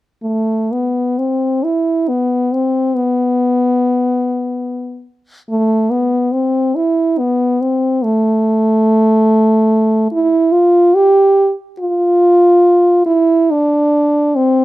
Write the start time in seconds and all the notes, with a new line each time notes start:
0.23 A3
0.72 B3
1.18 C4
1.63 E4
2.08 B3
2.54 C4
2.95 B3
5.49 A3
5.90 B3
6.33 C4
6.75 E4
7.19 B3
7.61 C4
8.04 A3
10.11 E4
10.52 F4
10.95 G4
11.79 F4
13.06 E4
13.51 D4
14.36 C4